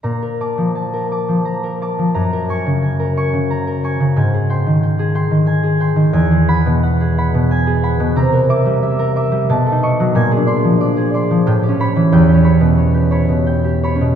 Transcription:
0.03 A#2 A#5
0.22 A#4
0.40 A5 D6
0.58 F3
0.75 A5
0.93 A#4
1.12 A5 D6
1.29 F3
1.45 A#5
1.63 A#4
1.82 A5 D6
1.99 F3
2.14 F#2 A#5
2.33 A#4
2.49 G#5 C#6
2.66 C#3
2.83 G#5
2.99 A#4
3.17 G#5 C#6
3.33 C#3
3.50 A#5
3.67 A#4
3.84 G#5 C#6
4.00 C#3
4.16 G#2 G#5
4.34 G#4
4.50 G5 C6
4.66 D#3
4.83 G5
4.99 G#4
5.15 G5 C6
5.31 D#3
5.46 G#5
5.63 G#4
5.80 G5 C6
5.96 D#3
6.13 E2 G#5
6.31 G#4
6.48 F#5 B5
6.66 B2
6.83 F#5
7.01 G#4
7.18 F#5 B5
7.34 B2
7.51 G#5
7.67 G#4
7.83 F#5 B5
8.00 B2
8.16 C3 A#5
8.32 A#4
8.49 E5 D6
8.66 G3
8.83 E5
8.99 A#4
9.16 E5 D6
9.32 G3
9.49 B2 A5
9.66 A4
9.72 D#4
9.83 D#5 C#6
10.00 F#3
10.15 A#2 G#5
10.31 G#4
10.37 D4
10.46 D5 C6
10.64 F3
10.81 D5
10.97 G#4
11.14 D5 C6
11.31 F3
11.47 A2 G5
11.63 G4
11.68 C#4
11.80 C#5 B5
11.96 E3
12.12 E2 G5
12.29 G4
12.34 C#4
12.44 C#5 B5
12.61 B2
12.77 C#5
12.94 G4
13.11 C#5 B5
13.29 B2
13.47 G5
13.65 G4
13.83 C#5 B5
13.95 C#4
14.01 B2

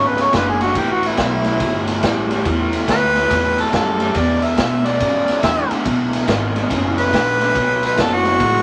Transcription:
Already playing: G#1 E2 C#3
0.07 B4
0.18 snare, ride
0.22 C#5
0.33 F#1 E2 D3 B4, kick, snare, ride
0.49 G#4
0.61 E2 D3 F#4, snare, ride
0.75 A1 A2 E3 G4, kick, ride
0.92 F#4
1.03 E4, snare, ride
1.17 B1 A2 E3, kick, snare, ride
1.44 A2 E3, snare, ride
1.60 G1 A2 F#3, kick, ride
1.87 snare, ride
2.03 A1 A2 G3, kick, snare, ride
2.30 A2 G3, snare, ride
2.45 E2 A2 E3, kick, ride
2.73 snare, ride
2.88 D2 A2 E3 B4, kick, snare, ride
3.15 A2 E3, snare, ride
3.30 E2 A2 F#3, kick, snare, ride
3.58 A4, snare, ride
3.73 F#2 A2 G3 A4, kick, snare, ride
4.00 A2 G3, snare, ride
4.15 E2 B2 D5, kick, snare, ride
4.42 E5, snare, ride
4.57 E2 B2, kick, snare, ride
4.84 E2 B2 D5, snare, ride
5.00 E2 F#2 C#3, kick, snare, ride
5.28 muted upright bass stroke, snare, ride
5.43 E2 D3 E5, kick, snare, ride
5.70 E2 D3, muted upright bass stroke, snare, ride
5.85 B1 E2 B2, kick, ride
6.13 snare, ride
6.27 G#1 E2 B2, kick, snare, ride
6.55 E2 B2, snare, ride
6.70 F#1 E2 C#3, kick, snare, ride
6.98 B4, snare, ride
7.12 A#1 E2 D3, kick, snare, ride
7.39 E2 D3, snare, ride
7.55 B1 B2 F#3, kick, ride
7.83 B4, snare, ride
7.97 F#1 B2 F#3 A4, kick, snare, ride
8.13 F#4
8.25 B2 F#3, snare, ride
8.40 A1 B2 G#3, kick, ride

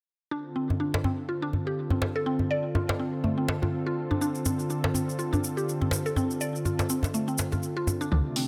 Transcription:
0.31 D3 C4 D4 F4 A4
0.56 C4
0.70 djembe tone
0.80 D4
0.94 djembe slap
1.04 C4, djembe tone
1.29 F4
1.42 D4
1.53 djembe tone
1.67 G4
1.90 C4, djembe tone
2.02 djembe slap
2.16 A4
2.26 C4
2.39 djembe tone
2.51 D5
2.75 F4, djembe tone
2.89 djembe slap
2.99 C4
3.24 A3, djembe tone
3.38 C4
3.48 djembe slap
3.62 F4, djembe tone
3.86 F4
4.11 D4, djembe tone
4.21 D4, maracas
4.35 maracas
4.45 C4, djembe tone, maracas
4.59 maracas
4.70 D4, maracas
4.84 djembe slap
4.94 C4, djembe tone, maracas
5.09 maracas
5.19 F4, maracas
5.33 D4, djembe tone, maracas
5.44 maracas
5.57 G4, maracas
5.69 maracas
5.81 C4, djembe tone
5.91 djembe slap, maracas
6.06 A4, maracas
6.16 C4, djembe tone, maracas
6.31 maracas
6.41 D5, maracas
6.55 maracas
6.65 F4, djembe tone, maracas
6.79 djembe slap, maracas
6.89 C4, maracas
7.03 djembe slap, djembe tone, maracas
7.14 A3, maracas
7.28 C4, maracas
7.38 djembe slap, maracas
7.52 F4, djembe tone, maracas
7.63 maracas
7.77 F4
7.87 djembe tone, maracas
8.01 D4, maracas
8.12 D2 C3 A3 D4 F4, mid tom, riser
8.36 C4, open hi-hat

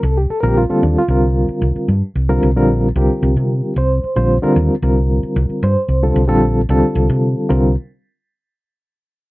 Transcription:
0.03 C2 A4
0.18 G4
0.30 A4, muted fingered electric bass stroke
0.40 A#1 D3 G3 C4 F4 A#4
0.48 G4
0.58 F4
0.69 D3 G3 A#3 C4 F4 A4, muted fingered electric bass stroke
0.83 D#2 D4
0.99 F4
1.08 C2 D3 G3 C4 F4 A#4
1.48 muted fingered electric bass stroke
1.62 C2
1.76 muted fingered electric bass stroke
1.88 G2
2.15 C2
2.29 D3 G3 C4 F4 A#4
2.43 C2
2.56 A#1 D3 G3 C4 F4 A#4
2.96 C2 D3 G3 C4 F4 G4 A#4
3.23 C2
3.36 C3
3.76 C2 C5
4.04 muted fingered electric bass stroke
4.16 A#1 D3 G3 C4 F4 C5
4.42 D3 G3 C4 F4 A#4, muted fingered electric bass stroke
4.56 D#2
4.82 C2 D3 G3 C4 F4 A#4
5.23 muted fingered electric bass stroke
5.36 C2
5.50 muted fingered electric bass stroke
5.63 G2 C5
5.88 C2
6.02 D3 G3 C4 F4 A4
6.16 C2
6.28 A#1 D3 G3 C4 F4 A4
6.69 C2 D3 G3 C4 F4 A4
6.95 C2
7.09 C3
7.49 C2 D3 G3 C4 F4 A#4

